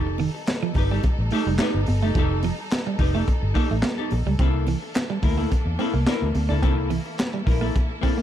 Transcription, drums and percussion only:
0.18 open hi-hat medium
0.18 muted conga medium
0.46 snare loud
0.46 clap medium
0.46 closed hi-hat medium
0.46 high conga medium
0.74 kick loud
0.74 open hi-hat medium
0.74 low conga medium
1.03 kick loud
1.03 closed hi-hat medium
1.03 muted conga medium
1.31 open hi-hat medium
1.31 low conga medium
1.58 snare loud
1.58 clap medium
1.58 closed hi-hat medium
1.58 high conga medium
1.74 high conga medium
1.86 open hi-hat medium
1.86 high conga medium
2.15 kick loud
2.15 closed hi-hat medium
2.15 muted conga soft
2.43 open hi-hat medium
2.43 muted conga medium
2.71 snare loud
2.71 clap medium
2.71 closed hi-hat medium
2.71 high conga medium
2.99 kick loud
2.99 open hi-hat medium
2.99 low conga medium
3.28 kick medium
3.28 closed hi-hat medium
3.28 muted conga medium
3.55 kick medium
3.55 open hi-hat medium
3.82 snare loud
3.82 clap medium
3.82 closed hi-hat medium
3.82 high conga medium
3.98 high conga medium
4.10 open hi-hat medium
4.10 high conga medium
4.39 kick loud
4.39 closed hi-hat medium
4.39 muted conga soft
4.67 open hi-hat medium
4.67 muted conga medium
4.94 snare loud
4.94 clap loud
4.94 closed hi-hat medium
4.94 high conga loud
5.22 kick loud
5.22 open hi-hat medium
5.22 low conga medium
5.51 kick medium
5.51 closed hi-hat medium
5.51 muted conga medium
5.79 open hi-hat medium
5.79 muted conga soft
5.79 low conga medium
6.06 snare medium
6.06 clap medium
6.06 closed hi-hat medium
6.06 high conga medium
6.21 high conga medium
6.35 open hi-hat medium
6.35 high conga medium
6.63 kick loud
6.63 closed hi-hat medium
6.63 muted conga medium
6.90 open hi-hat medium
6.90 muted conga medium
7.18 snare loud
7.18 clap loud
7.18 closed hi-hat medium
7.18 high conga medium
7.47 kick medium
7.47 open hi-hat medium
7.47 low conga medium
7.76 kick medium
7.76 closed hi-hat medium
7.76 muted conga medium
8.03 kick medium
8.03 open hi-hat medium
8.03 muted conga soft

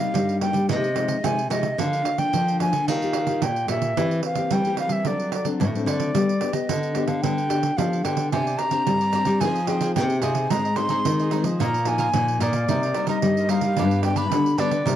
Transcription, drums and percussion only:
0.15 pandeiro medium
0.29 pandeiro soft
0.41 pandeiro medium
0.54 pandeiro medium
0.69 pandeiro medium
0.84 pandeiro soft
0.96 pandeiro medium
1.08 pandeiro medium
1.24 pandeiro medium
1.39 pandeiro soft
1.51 pandeiro medium
1.63 pandeiro medium
1.79 pandeiro medium
1.93 pandeiro soft
2.05 pandeiro medium
2.18 pandeiro medium
2.34 pandeiro medium
2.48 pandeiro soft
2.60 pandeiro medium
2.73 pandeiro medium
2.88 pandeiro medium
3.02 pandeiro soft
3.13 pandeiro medium
3.27 pandeiro medium
3.42 pandeiro medium
3.56 pandeiro soft
3.68 pandeiro medium
3.82 pandeiro medium
3.97 pandeiro medium
4.11 pandeiro soft
4.23 pandeiro medium
4.35 pandeiro medium
4.51 pandeiro medium
4.65 pandeiro soft
4.77 pandeiro medium
4.89 pandeiro medium
5.05 pandeiro medium
5.20 pandeiro soft
5.32 pandeiro medium
5.45 pandeiro medium
5.61 pandeiro medium
5.75 pandeiro soft
5.87 pandeiro medium
6.00 pandeiro medium
6.15 pandeiro medium
6.29 pandeiro soft
6.41 pandeiro medium
6.53 pandeiro medium
6.69 pandeiro medium
6.83 pandeiro soft
6.95 pandeiro medium
7.07 pandeiro medium
7.24 pandeiro medium
7.38 pandeiro soft
7.50 pandeiro medium
7.63 pandeiro medium
7.78 pandeiro medium
7.93 pandeiro soft
8.05 pandeiro medium
8.17 pandeiro medium
8.32 pandeiro medium
8.47 pandeiro soft
8.59 pandeiro medium
8.71 pandeiro medium
8.87 pandeiro medium
9.01 pandeiro soft
9.13 pandeiro medium
9.25 pandeiro medium
9.41 pandeiro medium
9.56 pandeiro soft
9.67 pandeiro medium
9.81 pandeiro medium
9.96 pandeiro medium
10.10 pandeiro soft
10.22 pandeiro medium
10.35 pandeiro medium
10.50 pandeiro medium
10.65 pandeiro soft
10.76 pandeiro medium
10.89 pandeiro medium
11.05 pandeiro medium
11.19 pandeiro soft
11.31 pandeiro medium
11.44 pandeiro medium
11.60 pandeiro medium
11.74 pandeiro soft
11.85 pandeiro medium
11.98 pandeiro medium
12.14 pandeiro medium
12.28 pandeiro soft
12.40 pandeiro medium
12.53 pandeiro medium
12.68 pandeiro medium
12.83 pandeiro soft
12.94 pandeiro medium
13.07 pandeiro medium
13.22 pandeiro medium
13.37 pandeiro soft
13.49 pandeiro medium
13.61 pandeiro medium
13.76 pandeiro medium
13.91 pandeiro soft
14.03 pandeiro medium
14.16 pandeiro medium
14.32 pandeiro medium
14.46 pandeiro soft
14.58 pandeiro medium
14.71 pandeiro medium
14.87 pandeiro medium

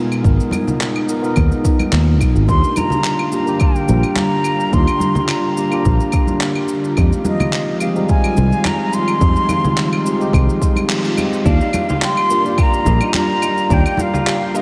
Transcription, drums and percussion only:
0.12 claves medium
0.12 shaker soft
0.24 kick loud
0.24 shaker soft
0.40 shaker soft
0.51 high conga medium
0.51 claves medium
0.51 shaker medium
0.68 low conga medium
0.68 shaker soft
0.81 clap medium
0.81 shaker soft
0.96 claves medium
1.09 shaker medium
1.24 shaker soft
1.36 kick loud
1.36 claves medium
1.36 shaker soft
1.52 shaker soft
1.65 kick loud
1.65 shaker medium
1.79 high conga medium
1.79 claves medium
1.79 shaker soft
1.93 clap loud
1.93 shaker soft
2.21 kick medium
2.21 claves medium
2.21 shaker medium
2.36 shaker soft
2.49 kick loud
2.49 shaker soft
2.64 shaker soft
2.76 high conga medium
2.76 claves medium
2.76 shaker medium
2.90 low conga medium
2.90 shaker soft
3.04 clap medium
3.04 shaker soft
3.19 claves medium
3.32 shaker medium
3.47 shaker soft
3.60 kick loud
3.60 claves medium
3.60 shaker soft
3.76 shaker soft
3.88 high conga medium
3.88 shaker medium
4.03 claves medium
4.03 shaker soft
4.16 clap medium
4.16 high conga medium
4.16 shaker soft
4.44 claves medium
4.44 shaker medium
4.60 shaker soft
4.73 kick loud
4.73 shaker soft
4.87 claves medium
4.87 shaker soft
5.00 high conga medium
5.00 shaker medium
5.15 low conga medium
5.15 shaker soft
5.28 clap medium
5.28 claves medium
5.28 shaker soft
5.57 shaker medium
5.72 claves medium
5.72 shaker soft
5.85 kick loud
5.85 shaker soft
6.00 shaker soft
6.12 kick medium
6.12 claves medium
6.12 shaker medium
6.27 high conga medium
6.27 shaker soft
6.41 clap loud
6.41 shaker soft
6.55 claves medium
6.68 shaker medium
6.84 shaker soft
6.97 kick loud
6.97 claves medium
6.97 shaker soft
7.12 shaker soft
7.24 high conga medium
7.24 shaker medium
7.40 low conga medium
7.40 claves medium
7.40 shaker soft
7.53 clap medium
7.53 shaker soft
7.80 claves medium
7.80 shaker medium
7.96 shaker soft
8.09 kick loud
8.09 shaker soft
8.24 claves medium
8.24 shaker soft
8.37 high conga medium
8.37 shaker medium
8.52 shaker soft
8.65 clap medium
8.65 high conga medium
8.65 claves medium
8.65 shaker soft
8.93 shaker medium
9.08 claves medium
9.08 shaker soft
9.21 kick loud
9.21 shaker soft
9.36 shaker soft
9.49 high conga loud
9.49 claves medium
9.49 shaker medium
9.64 low conga medium
9.64 shaker soft
9.77 clap medium
9.77 shaker soft
9.93 claves medium
10.06 shaker medium
10.21 shaker soft
10.33 kick loud
10.33 claves medium
10.33 shaker soft
10.50 shaker soft
10.62 kick medium
10.62 shaker medium
10.76 high conga medium
10.76 claves medium
10.76 shaker soft
10.89 clap loud
10.89 shaker soft
11.05 shaker soft
11.17 high conga medium
11.17 claves medium
11.17 shaker medium
11.33 shaker soft
11.46 kick loud
11.46 shaker soft
11.61 shaker soft
11.73 high conga medium
11.73 claves medium
11.73 shaker medium
11.89 low conga medium
11.89 shaker soft
12.02 clap loud
12.02 shaker soft
12.17 claves medium
12.30 shaker medium
12.46 shaker soft
12.58 kick loud
12.58 claves medium
12.58 shaker soft
12.74 shaker soft
12.85 kick medium
12.85 high conga medium
12.85 shaker medium
13.01 claves medium
13.01 shaker soft
13.14 clap loud
13.14 high conga medium
13.14 shaker soft
13.42 claves medium
13.42 shaker medium
13.58 shaker soft
13.70 kick loud
13.70 shaker soft
13.86 claves medium
13.86 shaker soft
13.97 high conga loud
13.97 shaker medium
14.14 low conga medium
14.14 shaker soft
14.27 clap loud
14.27 claves medium
14.27 shaker soft
14.55 shaker medium

